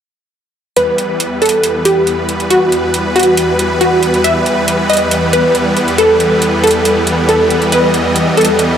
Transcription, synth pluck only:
0.77 1.33 B4 loud
1.42 1.79 A4 medium
1.85 2.42 G4 medium
2.50 3.07 F#4 medium
3.16 3.73 F#4 medium
3.81 4.18 F#4 medium
4.24 4.81 E5 loud
4.89 5.27 D#5 medium
5.33 5.90 B4 medium
5.98 6.55 A4 medium
6.63 7.20 A4 medium
7.29 7.66 A4 medium
7.72 8.29 B4 medium
8.37 8.74 A4 medium

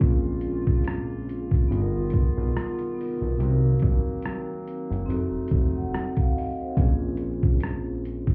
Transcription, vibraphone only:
0.00 1.32 C4 medium
0.00 1.33 C#4 medium
0.00 1.34 F4 medium
0.04 1.35 G#4 medium
1.68 2.73 B3 medium
1.68 2.74 D#4 loud
1.68 2.75 F4 medium
1.74 1.79 G#4 medium
1.81 2.79 A#4 loud
2.95 3.30 B3 medium
2.95 3.31 D#4 medium
2.95 3.32 F4 medium
3.01 3.33 A#4 loud
3.37 4.70 C4 medium
3.37 4.71 D#4 medium
3.37 4.72 F#4 medium
3.43 4.73 A#4 medium
5.06 6.11 C4 loud
5.06 6.12 D#4 loud
5.06 6.13 F#4 medium
5.12 6.14 A4 loud
5.76 6.15 F#5 medium
6.17 6.34 F5 medium
6.36 6.58 D#5 medium
6.61 7.00 C5 medium
6.75 8.08 C4 medium
6.75 8.09 C#4 medium
6.79 8.10 F4 medium
6.79 8.11 G#4 loud

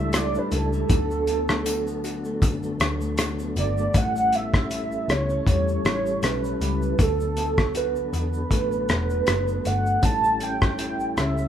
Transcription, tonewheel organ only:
0.00 0.85 G3 medium
0.00 0.86 D4 medium
0.00 0.86 E4 medium
0.00 0.87 A4 medium
0.87 3.89 F#3 medium
0.87 3.90 B3 medium
0.87 3.91 D4 medium
0.92 3.92 A4 medium
3.92 6.94 G3 medium
3.92 6.95 C#4 medium
3.92 6.96 E4 medium
3.97 6.96 A4 medium
6.96 9.98 F#3 medium
6.96 9.99 B3 medium
6.96 9.99 D4 medium
7.02 7.07 G#4 medium
7.08 10.04 A4 medium
10.01 11.48 G3 medium
10.01 11.48 C#4 medium
10.01 11.48 E4 medium
10.06 11.48 A4 medium

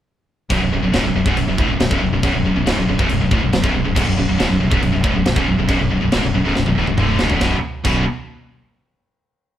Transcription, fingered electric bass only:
0.50 0.60 B0 medium
0.62 0.71 B0 medium
0.72 0.82 B0 medium
0.82 0.92 B0 medium
0.93 1.03 C#1 medium
1.04 1.14 B0 medium
1.15 1.25 B0 medium
1.26 1.35 B0 loud
1.36 1.46 B0 medium
1.47 1.57 B0 medium
1.58 1.68 D1 medium
1.68 1.79 B0 medium
1.79 1.90 B0 medium
1.91 2.00 B0 medium
2.01 2.11 B0 medium
2.12 2.22 B0 medium
2.23 2.33 B0 loud
2.34 2.44 B0 medium
2.45 2.54 B0 medium
2.55 2.65 B0 medium
2.66 2.76 C#1 medium
2.77 2.87 B0 medium
2.88 2.98 B0 medium
2.99 3.09 B0 medium
3.10 3.20 B0 medium
3.21 3.31 B0 medium
3.32 3.41 D1 medium
3.43 3.53 B0 medium
3.53 3.63 B0 medium
3.64 3.74 B0 medium
3.75 3.85 B0 medium
3.86 3.95 B0 medium
3.97 4.06 B0 loud
4.07 4.17 B0 medium
4.18 4.28 B0 medium
4.29 4.39 B0 medium
4.40 4.49 C#1 medium
4.51 4.60 B0 medium
4.62 4.71 B0 medium
4.71 4.81 B0 medium
4.83 4.93 B0 medium
4.94 5.04 B0 medium
5.04 5.14 D1 medium
5.16 5.25 B0 medium
5.26 5.36 B0 medium
5.36 5.46 B0 loud
5.48 5.58 B0 medium
5.58 5.68 B0 medium
5.69 5.79 B0 medium
5.80 5.90 B0 medium
5.91 6.01 B0 medium
6.02 6.12 B0 medium
6.14 6.23 C#1 medium
6.24 6.33 B0 medium
6.35 6.44 B0 medium
6.46 6.55 B0 medium
6.57 6.66 B0 medium
6.67 6.76 B0 medium
6.77 6.87 D1 medium
6.88 6.98 B0 medium
6.98 7.18 D1 medium
7.21 7.30 C#1 medium
7.31 7.41 B0 medium
7.41 7.54 B0 medium
7.85 8.05 B0 medium

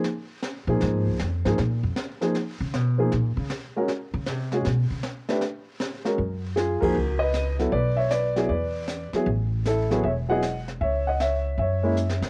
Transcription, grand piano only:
0.68 1.17 F3 medium
0.68 1.17 A#3 medium
0.68 1.17 D#4 medium
0.68 1.18 G#4 medium
1.45 1.57 F3 medium
1.45 1.57 A#3 medium
1.45 1.58 D#4 medium
1.45 1.58 G#4 medium
2.21 2.33 F3 medium
2.21 2.33 A#3 medium
2.21 2.34 D#4 medium
2.21 2.34 G#4 medium
2.98 3.10 F3 medium
2.98 3.10 A#3 medium
2.98 3.11 D#4 medium
2.98 3.11 G#4 medium
3.76 3.88 G#3 medium
3.76 3.88 C#4 medium
3.76 3.88 F#4 medium
3.76 3.88 A#4 medium
4.53 4.64 G#3 medium
4.53 4.64 C#4 medium
4.53 4.65 F#4 medium
4.53 4.65 G#4 medium
5.29 5.41 A3 medium
5.29 5.41 D4 medium
5.29 5.41 G4 medium
5.29 5.41 B4 medium
6.05 6.17 G#3 medium
6.05 6.17 C#4 medium
6.05 6.17 F#4 medium
6.05 6.18 A#4 medium
6.56 6.81 F4 medium
6.56 6.80 G#4 medium
6.81 6.94 F3 medium
6.81 6.94 A#3 medium
6.81 6.95 D#4 medium
6.81 7.18 F#4 medium
6.81 6.95 G#4 medium
6.81 7.17 A#4 medium
7.19 7.57 B4 medium
7.19 7.56 D#5 medium
7.59 7.71 F#3 medium
7.59 7.72 B3 medium
7.59 7.72 E4 medium
7.59 7.72 A4 medium
7.72 7.97 B4 medium
7.72 7.96 D5 medium
7.97 8.11 C#5 medium
7.97 8.10 E5 medium
8.11 8.48 B4 medium
8.11 8.47 D5 medium
8.36 8.48 F#3 medium
8.36 8.49 B3 medium
8.36 8.49 E4 medium
8.36 8.49 G#4 medium
8.49 9.10 B4 medium
8.49 9.09 D5 medium
9.14 9.26 F#3 medium
9.14 9.26 B3 medium
9.14 9.27 E4 medium
9.14 9.27 G#4 medium
9.67 9.89 E4 medium
9.67 9.92 A4 medium
9.90 10.03 F#3 medium
9.90 10.03 B3 medium
9.90 10.03 E4 medium
9.90 10.03 G#4 medium
9.90 10.05 A4 medium
9.90 10.03 C#5 medium
10.04 10.12 C#5 medium
10.04 10.10 E5 medium
10.28 10.41 F#3 medium
10.28 10.41 B3 medium
10.28 10.42 E4 medium
10.28 10.42 G#4 medium
10.28 10.67 D#5 medium
10.28 10.65 F#5 medium
10.81 11.06 C#5 medium
10.81 11.05 E5 medium
11.07 11.20 D#5 medium
11.07 11.19 F#5 medium
11.21 11.57 C#5 medium
11.21 11.56 E5 medium
11.59 12.20 C#5 medium
11.59 12.19 E5 medium
11.83 11.96 G#3 medium
11.83 11.96 A#3 medium
11.83 11.96 C#4 medium
11.83 11.96 E4 medium

